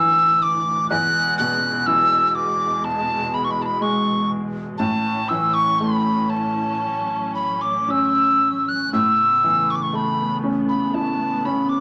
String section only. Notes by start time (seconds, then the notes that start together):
Already playing: D2 A2 E3
0.90 E2 B2 G#3
4.80 A2 E3 C#4
6.82 F#3
8.94 C#3 A3 B3